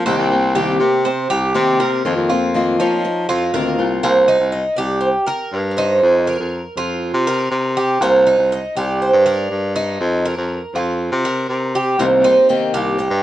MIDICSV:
0, 0, Header, 1, 6, 480
1, 0, Start_track
1, 0, Tempo, 497100
1, 57, Time_signature, 4, 2, 24, 8
1, 12774, End_track
2, 0, Start_track
2, 0, Title_t, "Cuban tres"
2, 0, Program_c, 0, 25
2, 2707, Note_on_c, 0, 73, 99
2, 3150, Note_off_c, 0, 73, 0
2, 3189, Note_on_c, 0, 75, 103
2, 3417, Note_off_c, 0, 75, 0
2, 3442, Note_on_c, 0, 77, 81
2, 3766, Note_off_c, 0, 77, 0
2, 3893, Note_on_c, 0, 72, 105
2, 4362, Note_off_c, 0, 72, 0
2, 4366, Note_on_c, 0, 75, 104
2, 4596, Note_off_c, 0, 75, 0
2, 4600, Note_on_c, 0, 74, 103
2, 4830, Note_off_c, 0, 74, 0
2, 4834, Note_on_c, 0, 72, 100
2, 4902, Note_off_c, 0, 72, 0
2, 5083, Note_on_c, 0, 70, 100
2, 5513, Note_on_c, 0, 74, 66
2, 5516, Note_off_c, 0, 70, 0
2, 5564, Note_off_c, 0, 74, 0
2, 5568, Note_on_c, 0, 72, 81
2, 6019, Note_off_c, 0, 72, 0
2, 7753, Note_on_c, 0, 72, 100
2, 8191, Note_off_c, 0, 72, 0
2, 8227, Note_on_c, 0, 75, 119
2, 8464, Note_off_c, 0, 75, 0
2, 8468, Note_on_c, 0, 74, 110
2, 8704, Note_off_c, 0, 74, 0
2, 8708, Note_on_c, 0, 72, 95
2, 8941, Note_off_c, 0, 72, 0
2, 8945, Note_on_c, 0, 74, 106
2, 9414, Note_off_c, 0, 74, 0
2, 9417, Note_on_c, 0, 75, 90
2, 9863, Note_off_c, 0, 75, 0
2, 11589, Note_on_c, 0, 72, 91
2, 11806, Note_off_c, 0, 72, 0
2, 11822, Note_on_c, 0, 72, 94
2, 12042, Note_off_c, 0, 72, 0
2, 12063, Note_on_c, 0, 79, 103
2, 12301, Note_off_c, 0, 79, 0
2, 12305, Note_on_c, 0, 77, 114
2, 12368, Note_off_c, 0, 77, 0
2, 12550, Note_on_c, 0, 75, 102
2, 12766, Note_off_c, 0, 75, 0
2, 12774, End_track
3, 0, Start_track
3, 0, Title_t, "Cuban tres"
3, 0, Program_c, 1, 25
3, 56, Note_on_c, 1, 60, 76
3, 523, Note_off_c, 1, 60, 0
3, 535, Note_on_c, 1, 67, 72
3, 1002, Note_off_c, 1, 67, 0
3, 1014, Note_on_c, 1, 72, 63
3, 1249, Note_off_c, 1, 72, 0
3, 1257, Note_on_c, 1, 67, 81
3, 1723, Note_off_c, 1, 67, 0
3, 1737, Note_on_c, 1, 70, 76
3, 2204, Note_off_c, 1, 70, 0
3, 2215, Note_on_c, 1, 65, 68
3, 2682, Note_off_c, 1, 65, 0
3, 2699, Note_on_c, 1, 63, 69
3, 3165, Note_off_c, 1, 63, 0
3, 3175, Note_on_c, 1, 65, 82
3, 3410, Note_off_c, 1, 65, 0
3, 3416, Note_on_c, 1, 70, 72
3, 3883, Note_off_c, 1, 70, 0
3, 3896, Note_on_c, 1, 58, 83
3, 4130, Note_off_c, 1, 58, 0
3, 4133, Note_on_c, 1, 63, 76
3, 4601, Note_off_c, 1, 63, 0
3, 4615, Note_on_c, 1, 67, 74
3, 5082, Note_off_c, 1, 67, 0
3, 5094, Note_on_c, 1, 70, 81
3, 5561, Note_off_c, 1, 70, 0
3, 5579, Note_on_c, 1, 63, 77
3, 6044, Note_off_c, 1, 63, 0
3, 6057, Note_on_c, 1, 70, 72
3, 6522, Note_off_c, 1, 70, 0
3, 6541, Note_on_c, 1, 65, 81
3, 7004, Note_off_c, 1, 65, 0
3, 7021, Note_on_c, 1, 70, 88
3, 7484, Note_off_c, 1, 70, 0
3, 7502, Note_on_c, 1, 67, 82
3, 7732, Note_off_c, 1, 67, 0
3, 7744, Note_on_c, 1, 58, 85
3, 7973, Note_off_c, 1, 58, 0
3, 7981, Note_on_c, 1, 63, 78
3, 8444, Note_off_c, 1, 63, 0
3, 8463, Note_on_c, 1, 67, 70
3, 8925, Note_off_c, 1, 67, 0
3, 8939, Note_on_c, 1, 70, 81
3, 9403, Note_off_c, 1, 70, 0
3, 9421, Note_on_c, 1, 63, 74
3, 9884, Note_off_c, 1, 63, 0
3, 9902, Note_on_c, 1, 70, 70
3, 10364, Note_off_c, 1, 70, 0
3, 10387, Note_on_c, 1, 65, 63
3, 10846, Note_off_c, 1, 65, 0
3, 10863, Note_on_c, 1, 70, 80
3, 11325, Note_off_c, 1, 70, 0
3, 11348, Note_on_c, 1, 67, 80
3, 11575, Note_off_c, 1, 67, 0
3, 11582, Note_on_c, 1, 58, 77
3, 11812, Note_off_c, 1, 58, 0
3, 11822, Note_on_c, 1, 63, 75
3, 12284, Note_off_c, 1, 63, 0
3, 12301, Note_on_c, 1, 67, 77
3, 12764, Note_off_c, 1, 67, 0
3, 12774, End_track
4, 0, Start_track
4, 0, Title_t, "Steel-string acoustic guitar"
4, 0, Program_c, 2, 25
4, 59, Note_on_c, 2, 48, 69
4, 65, Note_on_c, 2, 51, 78
4, 67, Note_on_c, 2, 58, 67
4, 69, Note_on_c, 2, 60, 83
4, 73, Note_on_c, 2, 67, 83
4, 289, Note_off_c, 2, 48, 0
4, 289, Note_off_c, 2, 67, 0
4, 292, Note_off_c, 2, 51, 0
4, 293, Note_off_c, 2, 58, 0
4, 293, Note_off_c, 2, 60, 0
4, 301, Note_on_c, 2, 67, 45
4, 312, Note_on_c, 2, 60, 45
4, 316, Note_on_c, 2, 58, 38
4, 530, Note_off_c, 2, 58, 0
4, 530, Note_off_c, 2, 67, 0
4, 534, Note_on_c, 2, 48, 73
4, 535, Note_off_c, 2, 60, 0
4, 538, Note_on_c, 2, 51, 79
4, 541, Note_on_c, 2, 58, 76
4, 545, Note_on_c, 2, 60, 81
4, 549, Note_on_c, 2, 67, 78
4, 756, Note_off_c, 2, 67, 0
4, 765, Note_off_c, 2, 60, 0
4, 766, Note_off_c, 2, 48, 0
4, 768, Note_off_c, 2, 51, 0
4, 768, Note_on_c, 2, 67, 56
4, 770, Note_off_c, 2, 58, 0
4, 776, Note_on_c, 2, 60, 42
4, 786, Note_on_c, 2, 58, 38
4, 1003, Note_off_c, 2, 67, 0
4, 1007, Note_off_c, 2, 60, 0
4, 1009, Note_off_c, 2, 58, 0
4, 1491, Note_on_c, 2, 48, 77
4, 1496, Note_on_c, 2, 51, 79
4, 1499, Note_on_c, 2, 58, 70
4, 1500, Note_on_c, 2, 60, 84
4, 1505, Note_on_c, 2, 67, 84
4, 1725, Note_off_c, 2, 48, 0
4, 1727, Note_off_c, 2, 67, 0
4, 1728, Note_off_c, 2, 51, 0
4, 1729, Note_off_c, 2, 58, 0
4, 1730, Note_off_c, 2, 60, 0
4, 1738, Note_on_c, 2, 67, 48
4, 1744, Note_on_c, 2, 60, 46
4, 1756, Note_on_c, 2, 58, 39
4, 1969, Note_off_c, 2, 67, 0
4, 1971, Note_off_c, 2, 58, 0
4, 1972, Note_off_c, 2, 60, 0
4, 1978, Note_on_c, 2, 51, 70
4, 1982, Note_on_c, 2, 58, 85
4, 1989, Note_on_c, 2, 60, 74
4, 1991, Note_on_c, 2, 65, 78
4, 2209, Note_off_c, 2, 51, 0
4, 2209, Note_off_c, 2, 65, 0
4, 2211, Note_off_c, 2, 58, 0
4, 2214, Note_off_c, 2, 60, 0
4, 2221, Note_on_c, 2, 65, 47
4, 2230, Note_on_c, 2, 60, 51
4, 2237, Note_on_c, 2, 58, 42
4, 2450, Note_off_c, 2, 65, 0
4, 2451, Note_off_c, 2, 58, 0
4, 2455, Note_off_c, 2, 60, 0
4, 2456, Note_on_c, 2, 51, 79
4, 2463, Note_on_c, 2, 58, 81
4, 2471, Note_on_c, 2, 60, 81
4, 2475, Note_on_c, 2, 65, 92
4, 2687, Note_off_c, 2, 51, 0
4, 2689, Note_off_c, 2, 65, 0
4, 2691, Note_off_c, 2, 58, 0
4, 2695, Note_off_c, 2, 60, 0
4, 2700, Note_on_c, 2, 65, 51
4, 2711, Note_on_c, 2, 60, 43
4, 2717, Note_on_c, 2, 58, 43
4, 2930, Note_off_c, 2, 65, 0
4, 2931, Note_off_c, 2, 58, 0
4, 2935, Note_off_c, 2, 60, 0
4, 3415, Note_on_c, 2, 51, 76
4, 3421, Note_on_c, 2, 58, 68
4, 3424, Note_on_c, 2, 60, 75
4, 3430, Note_on_c, 2, 65, 74
4, 3643, Note_off_c, 2, 65, 0
4, 3647, Note_off_c, 2, 51, 0
4, 3650, Note_off_c, 2, 58, 0
4, 3652, Note_off_c, 2, 60, 0
4, 3654, Note_on_c, 2, 65, 50
4, 3663, Note_on_c, 2, 60, 49
4, 3670, Note_on_c, 2, 58, 39
4, 3887, Note_off_c, 2, 65, 0
4, 3891, Note_off_c, 2, 60, 0
4, 3895, Note_off_c, 2, 58, 0
4, 11582, Note_on_c, 2, 48, 66
4, 11585, Note_on_c, 2, 51, 78
4, 11590, Note_on_c, 2, 58, 77
4, 11594, Note_on_c, 2, 60, 81
4, 11596, Note_on_c, 2, 67, 77
4, 11807, Note_off_c, 2, 67, 0
4, 11809, Note_off_c, 2, 48, 0
4, 11810, Note_off_c, 2, 51, 0
4, 11813, Note_off_c, 2, 58, 0
4, 11815, Note_off_c, 2, 60, 0
4, 11818, Note_on_c, 2, 67, 54
4, 11825, Note_on_c, 2, 60, 49
4, 11834, Note_on_c, 2, 58, 38
4, 12047, Note_off_c, 2, 67, 0
4, 12051, Note_off_c, 2, 60, 0
4, 12055, Note_off_c, 2, 58, 0
4, 12058, Note_on_c, 2, 48, 73
4, 12064, Note_on_c, 2, 51, 76
4, 12065, Note_on_c, 2, 58, 76
4, 12071, Note_on_c, 2, 60, 80
4, 12071, Note_on_c, 2, 67, 78
4, 12525, Note_off_c, 2, 48, 0
4, 12526, Note_off_c, 2, 51, 0
4, 12527, Note_off_c, 2, 60, 0
4, 12531, Note_off_c, 2, 58, 0
4, 12531, Note_off_c, 2, 67, 0
4, 12774, End_track
5, 0, Start_track
5, 0, Title_t, "Baritone saxophone"
5, 0, Program_c, 3, 67
5, 52, Note_on_c, 3, 36, 109
5, 169, Note_off_c, 3, 36, 0
5, 175, Note_on_c, 3, 36, 103
5, 747, Note_off_c, 3, 36, 0
5, 774, Note_on_c, 3, 48, 88
5, 1232, Note_off_c, 3, 48, 0
5, 1259, Note_on_c, 3, 36, 93
5, 1487, Note_off_c, 3, 36, 0
5, 1496, Note_on_c, 3, 48, 102
5, 1953, Note_off_c, 3, 48, 0
5, 1975, Note_on_c, 3, 41, 104
5, 2085, Note_off_c, 3, 41, 0
5, 2091, Note_on_c, 3, 41, 92
5, 2665, Note_off_c, 3, 41, 0
5, 2692, Note_on_c, 3, 53, 89
5, 3151, Note_off_c, 3, 53, 0
5, 3171, Note_on_c, 3, 41, 88
5, 3403, Note_off_c, 3, 41, 0
5, 3407, Note_on_c, 3, 38, 76
5, 3628, Note_off_c, 3, 38, 0
5, 3650, Note_on_c, 3, 36, 82
5, 3870, Note_off_c, 3, 36, 0
5, 3892, Note_on_c, 3, 36, 105
5, 4237, Note_off_c, 3, 36, 0
5, 4247, Note_on_c, 3, 36, 85
5, 4480, Note_off_c, 3, 36, 0
5, 4615, Note_on_c, 3, 36, 84
5, 4958, Note_off_c, 3, 36, 0
5, 5334, Note_on_c, 3, 43, 89
5, 5792, Note_off_c, 3, 43, 0
5, 5813, Note_on_c, 3, 41, 105
5, 6157, Note_off_c, 3, 41, 0
5, 6174, Note_on_c, 3, 41, 76
5, 6403, Note_off_c, 3, 41, 0
5, 6534, Note_on_c, 3, 41, 86
5, 6877, Note_off_c, 3, 41, 0
5, 6893, Note_on_c, 3, 48, 105
5, 7236, Note_off_c, 3, 48, 0
5, 7253, Note_on_c, 3, 48, 98
5, 7710, Note_off_c, 3, 48, 0
5, 7731, Note_on_c, 3, 36, 116
5, 8075, Note_off_c, 3, 36, 0
5, 8092, Note_on_c, 3, 36, 85
5, 8322, Note_off_c, 3, 36, 0
5, 8458, Note_on_c, 3, 36, 86
5, 8799, Note_off_c, 3, 36, 0
5, 8819, Note_on_c, 3, 43, 107
5, 9159, Note_off_c, 3, 43, 0
5, 9176, Note_on_c, 3, 43, 89
5, 9632, Note_off_c, 3, 43, 0
5, 9656, Note_on_c, 3, 41, 112
5, 9998, Note_off_c, 3, 41, 0
5, 10016, Note_on_c, 3, 41, 83
5, 10243, Note_off_c, 3, 41, 0
5, 10375, Note_on_c, 3, 41, 93
5, 10717, Note_off_c, 3, 41, 0
5, 10738, Note_on_c, 3, 48, 107
5, 11078, Note_off_c, 3, 48, 0
5, 11094, Note_on_c, 3, 48, 90
5, 11550, Note_off_c, 3, 48, 0
5, 11572, Note_on_c, 3, 36, 97
5, 11915, Note_off_c, 3, 36, 0
5, 12295, Note_on_c, 3, 36, 83
5, 12637, Note_off_c, 3, 36, 0
5, 12650, Note_on_c, 3, 43, 105
5, 12774, Note_off_c, 3, 43, 0
5, 12774, End_track
6, 0, Start_track
6, 0, Title_t, "Muted steel-string acoustic guitar strokes"
6, 1017, Note_on_c, 9, 29, 56
6, 1113, Note_off_c, 9, 29, 0
6, 2939, Note_on_c, 9, 29, 62
6, 3036, Note_off_c, 9, 29, 0
6, 12536, Note_on_c, 9, 29, 56
6, 12633, Note_off_c, 9, 29, 0
6, 12774, End_track
0, 0, End_of_file